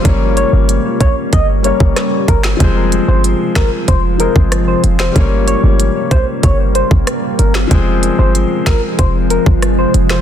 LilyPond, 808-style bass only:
\new Staff \with { instrumentName = "808-style bass" } { \clef bass \time 4/4 \key f \minor \tempo 4 = 94 g,,8. g,,8 r16 bes,,16 r16 g,,8. g,,16 r8 g,,8 | f,,8. g,,8 r16 aes,,16 r16 f,,8. g,,8. f,,8 | g,,8. g,,8 r16 bes,,16 r16 g,,8. g,,16 r8 g,,8 | f,,8. g,,8 r16 aes,,16 r16 f,,8. g,,8. f,,8 | }